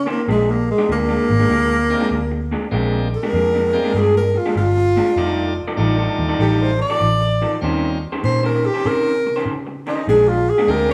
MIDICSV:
0, 0, Header, 1, 6, 480
1, 0, Start_track
1, 0, Tempo, 612245
1, 216, Time_signature, 4, 2, 24, 8
1, 8573, End_track
2, 0, Start_track
2, 0, Title_t, "Tenor saxophone"
2, 0, Program_c, 0, 66
2, 86, Note_on_c, 0, 58, 77
2, 227, Note_off_c, 0, 58, 0
2, 243, Note_on_c, 0, 56, 88
2, 398, Note_on_c, 0, 58, 85
2, 409, Note_off_c, 0, 56, 0
2, 543, Note_off_c, 0, 58, 0
2, 555, Note_on_c, 0, 56, 90
2, 701, Note_off_c, 0, 56, 0
2, 723, Note_on_c, 0, 58, 127
2, 2117, Note_off_c, 0, 58, 0
2, 2473, Note_on_c, 0, 70, 97
2, 3118, Note_on_c, 0, 68, 97
2, 3130, Note_off_c, 0, 70, 0
2, 3262, Note_off_c, 0, 68, 0
2, 3272, Note_on_c, 0, 70, 105
2, 3431, Note_on_c, 0, 65, 96
2, 3443, Note_off_c, 0, 70, 0
2, 3579, Note_off_c, 0, 65, 0
2, 3587, Note_on_c, 0, 65, 107
2, 4512, Note_off_c, 0, 65, 0
2, 5028, Note_on_c, 0, 67, 85
2, 5190, Note_on_c, 0, 72, 91
2, 5201, Note_off_c, 0, 67, 0
2, 5338, Note_off_c, 0, 72, 0
2, 5346, Note_on_c, 0, 74, 108
2, 5962, Note_off_c, 0, 74, 0
2, 6467, Note_on_c, 0, 72, 91
2, 6616, Note_off_c, 0, 72, 0
2, 6630, Note_on_c, 0, 70, 93
2, 6788, Note_on_c, 0, 67, 95
2, 6800, Note_off_c, 0, 70, 0
2, 6954, Note_on_c, 0, 70, 114
2, 6966, Note_off_c, 0, 67, 0
2, 7411, Note_off_c, 0, 70, 0
2, 7748, Note_on_c, 0, 63, 89
2, 7897, Note_off_c, 0, 63, 0
2, 7911, Note_on_c, 0, 68, 98
2, 8061, Note_on_c, 0, 65, 105
2, 8072, Note_off_c, 0, 68, 0
2, 8231, Note_on_c, 0, 68, 87
2, 8243, Note_off_c, 0, 65, 0
2, 8394, Note_on_c, 0, 70, 98
2, 8405, Note_off_c, 0, 68, 0
2, 8539, Note_off_c, 0, 70, 0
2, 8573, End_track
3, 0, Start_track
3, 0, Title_t, "Clean electric guitar"
3, 0, Program_c, 1, 27
3, 49, Note_on_c, 1, 51, 75
3, 52, Note_on_c, 1, 61, 85
3, 56, Note_on_c, 1, 67, 88
3, 61, Note_on_c, 1, 72, 94
3, 157, Note_off_c, 1, 51, 0
3, 159, Note_off_c, 1, 61, 0
3, 161, Note_off_c, 1, 67, 0
3, 163, Note_off_c, 1, 72, 0
3, 219, Note_on_c, 1, 46, 89
3, 223, Note_on_c, 1, 56, 86
3, 229, Note_on_c, 1, 62, 87
3, 230, Note_on_c, 1, 67, 102
3, 423, Note_off_c, 1, 46, 0
3, 425, Note_off_c, 1, 56, 0
3, 428, Note_off_c, 1, 62, 0
3, 428, Note_off_c, 1, 67, 0
3, 614, Note_on_c, 1, 67, 103
3, 616, Note_on_c, 1, 62, 88
3, 617, Note_on_c, 1, 56, 86
3, 621, Note_on_c, 1, 46, 76
3, 679, Note_off_c, 1, 46, 0
3, 685, Note_off_c, 1, 56, 0
3, 689, Note_on_c, 1, 46, 73
3, 690, Note_off_c, 1, 62, 0
3, 691, Note_off_c, 1, 67, 0
3, 694, Note_on_c, 1, 56, 72
3, 699, Note_on_c, 1, 62, 75
3, 700, Note_on_c, 1, 67, 83
3, 842, Note_off_c, 1, 67, 0
3, 845, Note_off_c, 1, 62, 0
3, 847, Note_off_c, 1, 56, 0
3, 850, Note_off_c, 1, 46, 0
3, 851, Note_on_c, 1, 67, 96
3, 854, Note_on_c, 1, 62, 85
3, 856, Note_on_c, 1, 56, 72
3, 862, Note_on_c, 1, 46, 75
3, 1035, Note_off_c, 1, 67, 0
3, 1037, Note_off_c, 1, 62, 0
3, 1038, Note_off_c, 1, 56, 0
3, 1040, Note_off_c, 1, 46, 0
3, 1094, Note_on_c, 1, 67, 86
3, 1096, Note_on_c, 1, 62, 78
3, 1097, Note_on_c, 1, 56, 74
3, 1100, Note_on_c, 1, 46, 68
3, 1161, Note_off_c, 1, 46, 0
3, 1164, Note_off_c, 1, 62, 0
3, 1167, Note_off_c, 1, 56, 0
3, 1170, Note_on_c, 1, 46, 91
3, 1171, Note_off_c, 1, 67, 0
3, 1174, Note_on_c, 1, 62, 83
3, 1176, Note_on_c, 1, 56, 86
3, 1180, Note_on_c, 1, 67, 94
3, 1378, Note_off_c, 1, 46, 0
3, 1380, Note_off_c, 1, 62, 0
3, 1381, Note_off_c, 1, 56, 0
3, 1383, Note_off_c, 1, 67, 0
3, 1570, Note_on_c, 1, 67, 96
3, 1572, Note_on_c, 1, 62, 87
3, 1578, Note_on_c, 1, 56, 81
3, 1582, Note_on_c, 1, 46, 79
3, 1701, Note_off_c, 1, 67, 0
3, 1702, Note_off_c, 1, 62, 0
3, 1705, Note_off_c, 1, 56, 0
3, 1707, Note_off_c, 1, 46, 0
3, 1971, Note_on_c, 1, 46, 78
3, 1977, Note_on_c, 1, 56, 81
3, 1980, Note_on_c, 1, 62, 80
3, 1982, Note_on_c, 1, 67, 92
3, 2078, Note_off_c, 1, 46, 0
3, 2081, Note_off_c, 1, 56, 0
3, 2082, Note_off_c, 1, 62, 0
3, 2083, Note_off_c, 1, 67, 0
3, 2132, Note_on_c, 1, 46, 78
3, 2136, Note_on_c, 1, 56, 93
3, 2142, Note_on_c, 1, 62, 86
3, 2144, Note_on_c, 1, 67, 90
3, 2339, Note_off_c, 1, 46, 0
3, 2341, Note_off_c, 1, 56, 0
3, 2344, Note_off_c, 1, 62, 0
3, 2345, Note_off_c, 1, 67, 0
3, 2532, Note_on_c, 1, 62, 87
3, 2533, Note_on_c, 1, 67, 94
3, 2537, Note_on_c, 1, 56, 82
3, 2541, Note_on_c, 1, 46, 70
3, 2604, Note_off_c, 1, 46, 0
3, 2605, Note_off_c, 1, 56, 0
3, 2610, Note_off_c, 1, 67, 0
3, 2612, Note_off_c, 1, 62, 0
3, 2613, Note_on_c, 1, 46, 80
3, 2615, Note_on_c, 1, 56, 70
3, 2619, Note_on_c, 1, 67, 82
3, 2621, Note_on_c, 1, 62, 76
3, 2763, Note_off_c, 1, 67, 0
3, 2766, Note_off_c, 1, 62, 0
3, 2772, Note_off_c, 1, 46, 0
3, 2772, Note_on_c, 1, 67, 92
3, 2773, Note_off_c, 1, 56, 0
3, 2775, Note_on_c, 1, 62, 81
3, 2781, Note_on_c, 1, 56, 91
3, 2784, Note_on_c, 1, 46, 87
3, 2955, Note_off_c, 1, 67, 0
3, 2957, Note_off_c, 1, 62, 0
3, 2960, Note_off_c, 1, 56, 0
3, 2961, Note_off_c, 1, 46, 0
3, 3011, Note_on_c, 1, 62, 84
3, 3012, Note_on_c, 1, 67, 84
3, 3016, Note_on_c, 1, 56, 75
3, 3018, Note_on_c, 1, 46, 65
3, 3084, Note_off_c, 1, 46, 0
3, 3089, Note_off_c, 1, 56, 0
3, 3091, Note_off_c, 1, 62, 0
3, 3094, Note_on_c, 1, 46, 79
3, 3095, Note_off_c, 1, 67, 0
3, 3098, Note_on_c, 1, 56, 88
3, 3101, Note_on_c, 1, 62, 87
3, 3104, Note_on_c, 1, 67, 95
3, 3300, Note_off_c, 1, 46, 0
3, 3302, Note_off_c, 1, 56, 0
3, 3303, Note_off_c, 1, 62, 0
3, 3305, Note_off_c, 1, 67, 0
3, 3494, Note_on_c, 1, 67, 93
3, 3499, Note_on_c, 1, 62, 86
3, 3503, Note_on_c, 1, 56, 81
3, 3505, Note_on_c, 1, 46, 69
3, 3623, Note_off_c, 1, 67, 0
3, 3626, Note_off_c, 1, 62, 0
3, 3627, Note_off_c, 1, 56, 0
3, 3629, Note_off_c, 1, 46, 0
3, 3892, Note_on_c, 1, 46, 71
3, 3898, Note_on_c, 1, 56, 76
3, 3900, Note_on_c, 1, 62, 85
3, 3904, Note_on_c, 1, 67, 87
3, 3998, Note_off_c, 1, 46, 0
3, 4001, Note_off_c, 1, 56, 0
3, 4002, Note_off_c, 1, 62, 0
3, 4005, Note_off_c, 1, 67, 0
3, 4056, Note_on_c, 1, 53, 90
3, 4056, Note_on_c, 1, 63, 84
3, 4060, Note_on_c, 1, 69, 79
3, 4062, Note_on_c, 1, 74, 106
3, 4261, Note_off_c, 1, 53, 0
3, 4261, Note_off_c, 1, 63, 0
3, 4263, Note_off_c, 1, 69, 0
3, 4264, Note_off_c, 1, 74, 0
3, 4449, Note_on_c, 1, 74, 95
3, 4452, Note_on_c, 1, 63, 79
3, 4452, Note_on_c, 1, 69, 81
3, 4457, Note_on_c, 1, 53, 80
3, 4521, Note_off_c, 1, 53, 0
3, 4529, Note_off_c, 1, 63, 0
3, 4530, Note_off_c, 1, 69, 0
3, 4530, Note_on_c, 1, 53, 74
3, 4533, Note_off_c, 1, 74, 0
3, 4539, Note_on_c, 1, 63, 77
3, 4540, Note_on_c, 1, 69, 86
3, 4543, Note_on_c, 1, 74, 81
3, 4678, Note_off_c, 1, 74, 0
3, 4684, Note_off_c, 1, 69, 0
3, 4687, Note_off_c, 1, 53, 0
3, 4687, Note_on_c, 1, 74, 84
3, 4688, Note_off_c, 1, 63, 0
3, 4693, Note_on_c, 1, 69, 82
3, 4696, Note_on_c, 1, 53, 77
3, 4697, Note_on_c, 1, 63, 82
3, 4873, Note_off_c, 1, 74, 0
3, 4876, Note_off_c, 1, 69, 0
3, 4877, Note_off_c, 1, 53, 0
3, 4878, Note_off_c, 1, 63, 0
3, 4927, Note_on_c, 1, 74, 81
3, 4931, Note_on_c, 1, 69, 80
3, 4933, Note_on_c, 1, 63, 80
3, 4941, Note_on_c, 1, 53, 72
3, 5000, Note_off_c, 1, 53, 0
3, 5003, Note_off_c, 1, 63, 0
3, 5007, Note_off_c, 1, 69, 0
3, 5009, Note_off_c, 1, 74, 0
3, 5010, Note_on_c, 1, 53, 72
3, 5013, Note_on_c, 1, 63, 95
3, 5017, Note_on_c, 1, 69, 103
3, 5018, Note_on_c, 1, 74, 85
3, 5218, Note_off_c, 1, 53, 0
3, 5219, Note_off_c, 1, 63, 0
3, 5221, Note_off_c, 1, 69, 0
3, 5222, Note_off_c, 1, 74, 0
3, 5407, Note_on_c, 1, 74, 95
3, 5409, Note_on_c, 1, 69, 81
3, 5415, Note_on_c, 1, 63, 79
3, 5417, Note_on_c, 1, 53, 76
3, 5540, Note_off_c, 1, 74, 0
3, 5541, Note_off_c, 1, 69, 0
3, 5544, Note_off_c, 1, 63, 0
3, 5545, Note_off_c, 1, 53, 0
3, 5815, Note_on_c, 1, 53, 84
3, 5817, Note_on_c, 1, 63, 97
3, 5820, Note_on_c, 1, 69, 81
3, 5821, Note_on_c, 1, 74, 92
3, 5920, Note_off_c, 1, 53, 0
3, 5921, Note_off_c, 1, 63, 0
3, 5922, Note_off_c, 1, 69, 0
3, 5923, Note_off_c, 1, 74, 0
3, 5980, Note_on_c, 1, 51, 91
3, 5981, Note_on_c, 1, 61, 84
3, 5988, Note_on_c, 1, 67, 102
3, 5988, Note_on_c, 1, 72, 95
3, 6183, Note_off_c, 1, 51, 0
3, 6183, Note_off_c, 1, 61, 0
3, 6187, Note_off_c, 1, 67, 0
3, 6187, Note_off_c, 1, 72, 0
3, 6368, Note_on_c, 1, 72, 87
3, 6371, Note_on_c, 1, 67, 100
3, 6376, Note_on_c, 1, 61, 88
3, 6378, Note_on_c, 1, 51, 79
3, 6441, Note_off_c, 1, 51, 0
3, 6444, Note_off_c, 1, 61, 0
3, 6447, Note_off_c, 1, 67, 0
3, 6450, Note_on_c, 1, 51, 70
3, 6451, Note_off_c, 1, 72, 0
3, 6453, Note_on_c, 1, 61, 74
3, 6456, Note_on_c, 1, 67, 68
3, 6461, Note_on_c, 1, 72, 88
3, 6600, Note_off_c, 1, 72, 0
3, 6606, Note_off_c, 1, 67, 0
3, 6610, Note_off_c, 1, 61, 0
3, 6610, Note_on_c, 1, 72, 95
3, 6611, Note_off_c, 1, 51, 0
3, 6616, Note_on_c, 1, 67, 89
3, 6620, Note_on_c, 1, 51, 74
3, 6620, Note_on_c, 1, 61, 86
3, 6794, Note_off_c, 1, 72, 0
3, 6797, Note_off_c, 1, 67, 0
3, 6799, Note_off_c, 1, 51, 0
3, 6799, Note_off_c, 1, 61, 0
3, 6850, Note_on_c, 1, 72, 85
3, 6853, Note_on_c, 1, 67, 78
3, 6856, Note_on_c, 1, 61, 76
3, 6860, Note_on_c, 1, 51, 66
3, 6928, Note_off_c, 1, 51, 0
3, 6933, Note_off_c, 1, 61, 0
3, 6934, Note_off_c, 1, 72, 0
3, 6935, Note_off_c, 1, 67, 0
3, 6937, Note_on_c, 1, 51, 89
3, 6943, Note_on_c, 1, 61, 96
3, 6948, Note_on_c, 1, 67, 91
3, 6948, Note_on_c, 1, 72, 96
3, 7142, Note_off_c, 1, 51, 0
3, 7144, Note_off_c, 1, 61, 0
3, 7147, Note_off_c, 1, 67, 0
3, 7147, Note_off_c, 1, 72, 0
3, 7339, Note_on_c, 1, 72, 92
3, 7346, Note_on_c, 1, 67, 100
3, 7348, Note_on_c, 1, 61, 88
3, 7349, Note_on_c, 1, 51, 72
3, 7465, Note_off_c, 1, 72, 0
3, 7469, Note_off_c, 1, 67, 0
3, 7470, Note_off_c, 1, 51, 0
3, 7470, Note_off_c, 1, 61, 0
3, 7735, Note_on_c, 1, 51, 85
3, 7741, Note_on_c, 1, 61, 97
3, 7743, Note_on_c, 1, 67, 85
3, 7746, Note_on_c, 1, 72, 81
3, 7840, Note_off_c, 1, 51, 0
3, 7843, Note_off_c, 1, 61, 0
3, 7844, Note_off_c, 1, 67, 0
3, 7845, Note_off_c, 1, 72, 0
3, 7901, Note_on_c, 1, 46, 78
3, 7906, Note_on_c, 1, 56, 85
3, 7909, Note_on_c, 1, 62, 100
3, 7909, Note_on_c, 1, 67, 91
3, 8103, Note_off_c, 1, 46, 0
3, 8106, Note_off_c, 1, 56, 0
3, 8107, Note_off_c, 1, 62, 0
3, 8107, Note_off_c, 1, 67, 0
3, 8295, Note_on_c, 1, 67, 92
3, 8302, Note_on_c, 1, 62, 97
3, 8307, Note_on_c, 1, 56, 91
3, 8310, Note_on_c, 1, 46, 76
3, 8368, Note_off_c, 1, 46, 0
3, 8369, Note_off_c, 1, 56, 0
3, 8372, Note_off_c, 1, 62, 0
3, 8376, Note_off_c, 1, 67, 0
3, 8377, Note_on_c, 1, 46, 73
3, 8379, Note_on_c, 1, 56, 79
3, 8382, Note_on_c, 1, 62, 78
3, 8385, Note_on_c, 1, 67, 84
3, 8530, Note_off_c, 1, 67, 0
3, 8532, Note_off_c, 1, 62, 0
3, 8534, Note_off_c, 1, 46, 0
3, 8534, Note_off_c, 1, 56, 0
3, 8539, Note_on_c, 1, 67, 102
3, 8542, Note_on_c, 1, 62, 90
3, 8544, Note_on_c, 1, 56, 88
3, 8547, Note_on_c, 1, 46, 72
3, 8573, Note_off_c, 1, 46, 0
3, 8573, Note_off_c, 1, 56, 0
3, 8573, Note_off_c, 1, 62, 0
3, 8573, Note_off_c, 1, 67, 0
3, 8573, End_track
4, 0, Start_track
4, 0, Title_t, "Tonewheel organ"
4, 0, Program_c, 2, 16
4, 1490, Note_on_c, 2, 58, 67
4, 1490, Note_on_c, 2, 60, 71
4, 1492, Note_on_c, 2, 56, 82
4, 1493, Note_on_c, 2, 62, 70
4, 1498, Note_on_c, 2, 67, 86
4, 1639, Note_off_c, 2, 58, 0
4, 1639, Note_off_c, 2, 60, 0
4, 1640, Note_off_c, 2, 56, 0
4, 1640, Note_off_c, 2, 62, 0
4, 1642, Note_off_c, 2, 67, 0
4, 2126, Note_on_c, 2, 58, 43
4, 2127, Note_on_c, 2, 56, 49
4, 2128, Note_on_c, 2, 60, 48
4, 2132, Note_on_c, 2, 62, 47
4, 2135, Note_on_c, 2, 67, 61
4, 2415, Note_off_c, 2, 56, 0
4, 2415, Note_off_c, 2, 58, 0
4, 2416, Note_off_c, 2, 60, 0
4, 2418, Note_off_c, 2, 62, 0
4, 2419, Note_off_c, 2, 67, 0
4, 2922, Note_on_c, 2, 56, 73
4, 2926, Note_on_c, 2, 58, 80
4, 2927, Note_on_c, 2, 62, 74
4, 2928, Note_on_c, 2, 60, 75
4, 2929, Note_on_c, 2, 67, 88
4, 3074, Note_off_c, 2, 56, 0
4, 3076, Note_off_c, 2, 58, 0
4, 3077, Note_off_c, 2, 60, 0
4, 3077, Note_off_c, 2, 62, 0
4, 3078, Note_off_c, 2, 67, 0
4, 4057, Note_on_c, 2, 55, 57
4, 4057, Note_on_c, 2, 57, 56
4, 4058, Note_on_c, 2, 62, 51
4, 4059, Note_on_c, 2, 63, 53
4, 4059, Note_on_c, 2, 65, 70
4, 4340, Note_off_c, 2, 55, 0
4, 4340, Note_off_c, 2, 57, 0
4, 4341, Note_off_c, 2, 62, 0
4, 4341, Note_off_c, 2, 65, 0
4, 4342, Note_off_c, 2, 63, 0
4, 4525, Note_on_c, 2, 55, 75
4, 4525, Note_on_c, 2, 57, 72
4, 4525, Note_on_c, 2, 62, 66
4, 4526, Note_on_c, 2, 63, 65
4, 4529, Note_on_c, 2, 65, 76
4, 5263, Note_off_c, 2, 55, 0
4, 5263, Note_off_c, 2, 57, 0
4, 5263, Note_off_c, 2, 62, 0
4, 5263, Note_off_c, 2, 63, 0
4, 5265, Note_off_c, 2, 65, 0
4, 5967, Note_on_c, 2, 55, 56
4, 5969, Note_on_c, 2, 60, 50
4, 5974, Note_on_c, 2, 61, 54
4, 5974, Note_on_c, 2, 65, 57
4, 5976, Note_on_c, 2, 63, 46
4, 6256, Note_off_c, 2, 55, 0
4, 6256, Note_off_c, 2, 60, 0
4, 6259, Note_off_c, 2, 61, 0
4, 6259, Note_off_c, 2, 65, 0
4, 6260, Note_off_c, 2, 63, 0
4, 8371, Note_on_c, 2, 56, 63
4, 8373, Note_on_c, 2, 58, 60
4, 8374, Note_on_c, 2, 62, 58
4, 8376, Note_on_c, 2, 60, 58
4, 8377, Note_on_c, 2, 67, 73
4, 8573, Note_off_c, 2, 56, 0
4, 8573, Note_off_c, 2, 58, 0
4, 8573, Note_off_c, 2, 60, 0
4, 8573, Note_off_c, 2, 62, 0
4, 8573, Note_off_c, 2, 67, 0
4, 8573, End_track
5, 0, Start_track
5, 0, Title_t, "Fingered electric bass"
5, 0, Program_c, 3, 33
5, 217, Note_on_c, 3, 34, 81
5, 549, Note_off_c, 3, 34, 0
5, 698, Note_on_c, 3, 38, 87
5, 916, Note_off_c, 3, 38, 0
5, 1013, Note_on_c, 3, 32, 83
5, 1126, Note_off_c, 3, 32, 0
5, 1173, Note_on_c, 3, 38, 96
5, 1507, Note_off_c, 3, 38, 0
5, 1651, Note_on_c, 3, 38, 86
5, 1985, Note_off_c, 3, 38, 0
5, 2129, Note_on_c, 3, 34, 91
5, 2464, Note_off_c, 3, 34, 0
5, 2611, Note_on_c, 3, 41, 93
5, 2945, Note_off_c, 3, 41, 0
5, 3085, Note_on_c, 3, 43, 96
5, 3421, Note_off_c, 3, 43, 0
5, 3569, Note_on_c, 3, 31, 87
5, 3904, Note_off_c, 3, 31, 0
5, 4044, Note_on_c, 3, 29, 92
5, 4381, Note_off_c, 3, 29, 0
5, 4525, Note_on_c, 3, 33, 87
5, 4748, Note_off_c, 3, 33, 0
5, 4846, Note_on_c, 3, 39, 84
5, 4962, Note_off_c, 3, 39, 0
5, 5005, Note_on_c, 3, 33, 89
5, 5341, Note_off_c, 3, 33, 0
5, 5491, Note_on_c, 3, 33, 90
5, 5826, Note_off_c, 3, 33, 0
5, 5974, Note_on_c, 3, 39, 83
5, 6307, Note_off_c, 3, 39, 0
5, 6454, Note_on_c, 3, 46, 90
5, 6788, Note_off_c, 3, 46, 0
5, 6940, Note_on_c, 3, 48, 97
5, 7271, Note_off_c, 3, 48, 0
5, 7412, Note_on_c, 3, 49, 80
5, 7746, Note_off_c, 3, 49, 0
5, 7897, Note_on_c, 3, 34, 82
5, 8229, Note_off_c, 3, 34, 0
5, 8369, Note_on_c, 3, 38, 93
5, 8573, Note_off_c, 3, 38, 0
5, 8573, End_track
6, 0, Start_track
6, 0, Title_t, "Muted clean electric guitar strokes"
6, 1488, Note_on_c, 9, 29, 43
6, 1567, Note_off_c, 9, 29, 0
6, 1813, Note_on_c, 9, 29, 48
6, 1892, Note_off_c, 9, 29, 0
6, 3406, Note_on_c, 9, 29, 40
6, 3485, Note_off_c, 9, 29, 0
6, 3740, Note_on_c, 9, 29, 48
6, 3818, Note_off_c, 9, 29, 0
6, 5323, Note_on_c, 9, 29, 47
6, 5402, Note_off_c, 9, 29, 0
6, 5650, Note_on_c, 9, 29, 54
6, 5729, Note_off_c, 9, 29, 0
6, 7263, Note_on_c, 9, 29, 40
6, 7342, Note_off_c, 9, 29, 0
6, 7578, Note_on_c, 9, 29, 62
6, 7657, Note_off_c, 9, 29, 0
6, 8573, End_track
0, 0, End_of_file